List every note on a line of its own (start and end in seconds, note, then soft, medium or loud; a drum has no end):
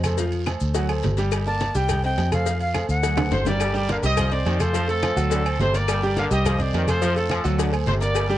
0.00 0.56 F2 loud
0.00 cowbell medium
0.00 high conga medium
0.00 low agogo loud
0.00 claves medium
0.00 maracas medium
0.05 0.16 A3 medium
0.05 0.16 A4 medium
0.05 0.16 C5 medium
0.05 short guiro medium
0.18 0.42 F3 medium
0.18 0.42 F4 medium
0.18 0.42 F5 medium
0.18 cowbell loud
0.18 high conga soft
0.18 maracas medium
0.32 high conga soft
0.32 low agogo medium
0.32 maracas soft
0.46 0.70 A3 medium
0.46 0.70 A4 medium
0.46 0.70 C5 medium
0.46 cowbell medium
0.46 high conga loud
0.46 low timbale medium
0.46 low agogo loud
0.46 short guiro medium
0.46 claves medium
0.46 maracas soft
0.60 1.01 D2 loud
0.60 high conga soft
0.60 short guiro medium
0.60 maracas medium
0.74 0.86 F#3 medium
0.74 0.87 F#4 medium
0.74 0.87 F#5 medium
0.74 cowbell loud
0.74 high conga soft
0.74 low agogo medium
0.74 long guiro medium
0.74 maracas medium
0.89 1.13 A3 medium
0.89 1.13 A4 medium
0.89 1.13 C5 medium
0.89 high conga soft
0.89 low agogo loud
0.89 claves medium
0.89 maracas soft
1.03 1.70 G1 loud
1.03 cowbell medium
1.03 high conga medium
1.03 low timbale medium
1.03 short guiro medium
1.03 maracas soft
1.17 1.41 G3 loud
1.17 1.41 G4 loud
1.17 1.42 G5 medium
1.17 cowbell medium
1.17 low agogo medium
1.17 short guiro medium
1.17 maracas medium
1.32 cowbell loud
1.32 high conga soft
1.32 low agogo loud
1.32 long guiro medium
1.32 claves medium
1.32 maracas medium
1.46 1.70 A#3 medium
1.46 1.70 A#4 medium
1.46 1.70 D5 medium
1.46 1.78 A5 medium
1.46 high conga soft
1.46 maracas soft
1.60 cowbell medium
1.60 high conga loud
1.60 low timbale medium
1.60 low agogo medium
1.60 short guiro medium
1.60 maracas soft
1.75 2.15 C2 loud
1.75 1.98 G3 medium
1.75 1.98 G4 loud
1.75 1.99 G5 loud
1.75 2.04 G5 loud
1.75 short guiro medium
1.75 maracas medium
1.89 cowbell loud
1.89 high conga soft
1.89 low conga medium
1.89 low agogo loud
1.89 claves medium
1.89 maracas loud
2.03 2.27 C4 medium
2.03 2.27 C5 medium
2.03 2.27 D#5 medium
2.03 2.31 G5 loud
2.03 cowbell medium
2.03 high conga soft
2.03 maracas soft
2.18 2.84 F2 loud
2.18 cowbell medium
2.18 high conga soft
2.18 low timbale medium
2.18 low agogo medium
2.18 short guiro medium
2.18 maracas soft
2.32 2.44 A3 medium
2.32 2.44 A4 medium
2.32 2.44 C5 medium
2.32 2.59 F5 loud
2.32 cowbell medium
2.32 high conga medium
2.32 low agogo medium
2.32 short guiro medium
2.32 claves medium
2.32 maracas medium
2.46 2.69 F3 medium
2.46 2.70 F4 medium
2.46 2.70 F5 medium
2.46 cowbell loud
2.46 high conga soft
2.46 long guiro medium
2.46 maracas loud
2.60 2.88 F5 medium
2.60 high conga soft
2.60 low agogo medium
2.60 maracas soft
2.74 2.98 A3 medium
2.74 2.98 A4 medium
2.74 2.98 C5 medium
2.74 cowbell medium
2.74 high conga loud
2.74 low timbale medium
2.74 low agogo loud
2.74 short guiro medium
2.74 claves medium
2.74 maracas soft
2.89 3.29 D2 loud
2.89 3.42 F#5 medium
2.89 high conga soft
2.89 short guiro medium
2.89 maracas medium
3.03 3.15 F#3 medium
3.03 3.15 F#4 medium
3.03 3.15 F#5 medium
3.03 cowbell loud
3.03 high conga soft
3.03 low agogo medium
3.03 long guiro medium
3.03 maracas medium
3.17 3.41 A3 medium
3.17 3.41 A4 medium
3.17 3.41 C5 medium
3.17 high bongo medium
3.17 high conga medium
3.17 high timbale loud
3.17 low agogo loud
3.17 claves medium
3.17 maracas soft
3.31 3.97 G1 loud
3.31 3.45 C5 medium
3.31 cowbell medium
3.31 low bongo medium
3.31 low conga loud
3.31 low timbale medium
3.31 short guiro medium
3.31 maracas soft
3.45 3.58 G3 loud
3.45 3.58 G4 medium
3.45 4.00 G4 medium
3.45 4.00 A#4 medium
3.45 3.73 D5 loud
3.45 3.58 G5 medium
3.45 cowbell medium
3.45 low bongo medium
3.45 low conga medium
3.45 low timbale medium
3.45 low agogo medium
3.45 short guiro medium
3.45 maracas medium
3.60 3.75 G3 medium
3.60 cowbell loud
3.60 high conga soft
3.60 low agogo loud
3.60 long guiro medium
3.60 claves medium
3.60 maracas loud
3.74 3.86 G3 loud
3.74 3.86 G4 loud
3.74 3.88 D5 loud
3.74 3.86 G5 loud
3.74 high conga soft
3.74 maracas soft
3.89 4.04 D3 medium
3.89 4.01 A#3 medium
3.89 4.01 A#4 medium
3.89 4.01 D5 medium
3.89 3.97 F5 loud
3.89 cowbell medium
3.89 high conga loud
3.89 low timbale medium
3.89 low agogo medium
3.89 short guiro medium
3.89 maracas soft
4.02 4.43 C2 loud
4.02 4.26 G3 loud
4.02 4.27 G4 loud
4.02 4.32 G4 medium
4.02 4.57 C5 medium
4.02 4.31 D#5 loud
4.02 4.26 G5 medium
4.02 short guiro medium
4.02 maracas medium
4.17 4.32 F3 medium
4.17 cowbell loud
4.17 high conga soft
4.17 low conga loud
4.17 low agogo loud
4.17 long guiro medium
4.17 claves medium
4.17 maracas loud
4.31 4.54 C4 medium
4.31 4.72 G4 medium
4.31 4.55 C5 medium
4.31 4.52 D5 loud
4.31 4.55 D#5 medium
4.31 cowbell medium
4.31 high conga soft
4.31 maracas soft
4.45 5.11 F2 medium
4.45 4.61 D#3 medium
4.45 cowbell medium
4.45 high conga soft
4.45 low timbale medium
4.45 low agogo medium
4.45 short guiro medium
4.45 maracas soft
4.54 4.60 D5 medium
4.60 4.72 A3 medium
4.60 4.90 F4 medium
4.60 4.72 A4 medium
4.60 4.89 A4 medium
4.60 4.72 C5 medium
4.60 4.89 C5 loud
4.60 cowbell medium
4.60 high conga medium
4.60 low agogo loud
4.60 short guiro medium
4.60 claves medium
4.60 maracas medium
4.73 4.89 F3 loud
4.73 4.86 F3 medium
4.73 4.86 F4 medium
4.73 4.86 F5 medium
4.73 cowbell loud
4.73 high conga soft
4.73 long guiro medium
4.73 maracas loud
4.88 5.11 A3 loud
4.88 5.57 C4 medium
4.88 5.29 F4 medium
4.88 5.12 A4 medium
4.88 5.57 A4 loud
4.88 5.12 C5 medium
4.88 high conga soft
4.88 low agogo medium
4.88 maracas soft
5.03 5.18 F3 medium
5.03 cowbell medium
5.03 high conga loud
5.03 low timbale medium
5.03 low agogo loud
5.03 short guiro medium
5.03 claves medium
5.03 maracas soft
5.16 5.56 D2 loud
5.16 5.40 F#3 loud
5.16 5.40 F#4 medium
5.16 5.40 F#5 medium
5.16 short guiro medium
5.16 maracas medium
5.30 5.45 D3 medium
5.30 cowbell loud
5.30 high conga soft
5.30 low agogo medium
5.30 long guiro medium
5.30 maracas loud
5.45 5.57 A3 medium
5.45 5.57 A4 medium
5.45 5.57 C5 medium
5.45 high conga soft
5.45 low agogo loud
5.45 claves medium
5.45 maracas soft
5.59 6.25 G1 loud
5.59 5.75 C3 medium
5.59 5.72 A3 medium
5.59 5.72 A4 medium
5.59 5.72 C5 medium
5.59 5.74 C5 loud
5.59 cowbell medium
5.59 high conga medium
5.59 low timbale medium
5.59 short guiro medium
5.59 maracas soft
5.74 5.97 A#3 medium
5.74 6.28 G4 medium
5.74 5.97 A#4 medium
5.74 6.28 A#4 medium
5.74 5.97 D5 medium
5.74 6.02 D5 loud
5.74 cowbell medium
5.74 low agogo medium
5.74 short guiro medium
5.74 maracas medium
5.88 6.03 G3 loud
5.88 cowbell loud
5.88 high conga soft
5.88 low agogo loud
5.88 long guiro medium
5.88 claves medium
5.88 maracas loud
6.03 6.14 G3 loud
6.03 6.14 G4 loud
6.03 6.16 D5 medium
6.03 6.14 G5 loud
6.03 high conga soft
6.03 maracas soft
6.17 6.33 D3 loud
6.17 6.29 A#3 medium
6.17 6.29 A#4 medium
6.17 6.29 D5 medium
6.17 6.24 F5 loud
6.17 cowbell medium
6.17 high conga medium
6.17 low timbale medium
6.17 low agogo medium
6.17 short guiro medium
6.17 maracas soft
6.31 6.71 C2 loud
6.31 6.54 G3 loud
6.31 6.54 G4 loud
6.31 6.59 G4 medium
6.31 6.85 C5 medium
6.31 6.58 D#5 loud
6.31 6.55 G5 medium
6.31 short guiro medium
6.31 maracas medium
6.45 6.60 F3 medium
6.45 cowbell loud
6.45 high conga soft
6.45 low conga medium
6.45 low agogo loud
6.45 claves medium
6.45 maracas loud
6.59 6.82 C4 medium
6.59 7.00 G4 medium
6.59 6.82 C5 medium
6.59 6.88 D5 medium
6.59 6.82 D#5 medium
6.59 cowbell medium
6.59 high conga soft
6.59 low conga medium
6.59 maracas soft
6.73 7.39 F2 medium
6.73 6.89 D#3 medium
6.73 cowbell medium
6.73 high conga soft
6.73 low timbale medium
6.73 low agogo medium
6.73 short guiro medium
6.73 maracas soft
6.87 6.99 A3 medium
6.87 7.16 F4 medium
6.87 6.99 A4 medium
6.87 7.16 A4 medium
6.87 7.00 C5 medium
6.87 7.14 C5 loud
6.87 cowbell medium
6.87 high conga medium
6.87 low agogo loud
6.87 short guiro medium
6.87 claves medium
6.87 maracas medium
7.02 7.13 F3 medium
7.02 7.17 F3 loud
7.02 7.14 F4 medium
7.02 7.14 F5 medium
7.02 cowbell loud
7.02 high conga soft
7.02 long guiro medium
7.02 maracas loud
7.16 7.39 A3 medium
7.16 7.58 C4 medium
7.16 7.58 F4 medium
7.16 7.39 A4 medium
7.16 7.58 A4 medium
7.16 7.39 C5 medium
7.16 high conga soft
7.16 low agogo medium
7.16 maracas soft
7.30 7.45 F3 medium
7.30 cowbell medium
7.30 high conga loud
7.30 low timbale medium
7.30 low agogo loud
7.30 short guiro medium
7.30 claves medium
7.30 maracas soft
7.44 7.84 D2 loud
7.44 7.68 F#3 loud
7.44 7.68 F#4 medium
7.44 7.68 F#5 medium
7.44 high conga soft
7.44 short guiro medium
7.44 maracas medium
7.58 7.73 D3 medium
7.58 cowbell loud
7.58 high conga soft
7.58 low agogo medium
7.58 long guiro medium
7.58 maracas loud
7.71 7.84 A3 medium
7.71 7.84 A4 medium
7.71 7.84 C5 medium
7.71 high conga soft
7.71 low agogo loud
7.71 claves medium
7.71 maracas soft
7.86 8.38 G1 loud
7.86 8.02 C3 medium
7.86 7.98 A3 medium
7.86 7.99 A4 medium
7.86 7.93 C5 medium
7.86 7.99 C5 medium
7.86 cowbell medium
7.86 high conga medium
7.86 low timbale medium
7.86 short guiro medium
7.86 maracas soft
8.01 8.25 A#3 medium
8.01 8.38 G4 medium
8.01 8.25 A#4 medium
8.01 8.38 A#4 medium
8.01 8.28 D5 loud
8.01 8.25 D5 medium
8.01 cowbell medium
8.01 low agogo medium
8.01 short guiro medium
8.01 maracas medium
8.14 8.30 G3 medium
8.14 cowbell loud
8.14 high conga soft
8.14 low agogo loud
8.14 long guiro medium
8.14 claves medium
8.14 maracas loud
8.29 8.38 G3 loud
8.29 8.38 G4 loud
8.29 8.38 D5 loud
8.29 8.38 G5 loud
8.29 high conga soft
8.29 maracas soft